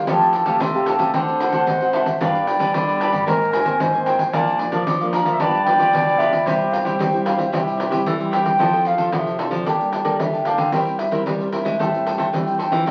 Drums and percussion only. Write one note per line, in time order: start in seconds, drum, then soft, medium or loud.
0.07 pandeiro medium
0.21 pandeiro soft
0.33 pandeiro medium
0.46 pandeiro medium
0.60 pandeiro medium
0.74 pandeiro soft
0.86 pandeiro medium
0.99 pandeiro medium
1.14 pandeiro medium
1.28 pandeiro soft
1.40 pandeiro medium
1.52 pandeiro medium
1.67 pandeiro medium
1.81 pandeiro soft
1.93 pandeiro medium
2.06 pandeiro medium
2.21 pandeiro medium
2.35 pandeiro soft
2.47 pandeiro medium
2.60 pandeiro medium
2.74 pandeiro medium
2.89 pandeiro soft
3.01 pandeiro medium
3.13 pandeiro medium
3.28 pandeiro medium
3.42 pandeiro soft
3.53 pandeiro medium
3.66 pandeiro medium
3.80 pandeiro medium
3.95 pandeiro soft
4.06 pandeiro medium
4.19 pandeiro medium
4.33 pandeiro medium
4.47 pandeiro soft
4.59 pandeiro medium
4.72 pandeiro medium
4.87 pandeiro medium
5.01 pandeiro soft
5.13 pandeiro medium
5.26 pandeiro medium
5.40 pandeiro medium
5.54 pandeiro soft
5.66 pandeiro medium
5.79 pandeiro medium
5.95 pandeiro medium
6.09 pandeiro soft
6.20 pandeiro medium
6.33 pandeiro medium
6.47 pandeiro medium
6.61 pandeiro soft
6.73 pandeiro medium
6.86 pandeiro medium
7.00 pandeiro medium
7.14 pandeiro soft
7.26 pandeiro medium
7.39 pandeiro medium
7.53 pandeiro medium
7.68 pandeiro soft
7.80 pandeiro medium
7.92 pandeiro medium
8.06 pandeiro medium
8.20 pandeiro soft
8.33 pandeiro medium
8.46 pandeiro medium
8.60 pandeiro medium
8.73 pandeiro soft
8.85 pandeiro medium
8.98 pandeiro medium
9.12 pandeiro medium
9.27 pandeiro soft
9.39 pandeiro medium
9.52 pandeiro medium
9.66 pandeiro medium
9.81 pandeiro soft
9.93 pandeiro medium
10.05 pandeiro medium
10.20 pandeiro medium
10.34 pandeiro soft
10.45 pandeiro medium
10.58 pandeiro medium
10.72 pandeiro medium
10.87 pandeiro soft
10.99 pandeiro medium
11.12 pandeiro medium
11.27 pandeiro medium
11.40 pandeiro soft
11.52 pandeiro medium
11.66 pandeiro medium
11.80 pandeiro medium
11.94 pandeiro soft
12.07 pandeiro medium
12.19 pandeiro medium
12.34 pandeiro medium
12.47 pandeiro soft
12.60 pandeiro medium
12.72 pandeiro medium
12.87 pandeiro medium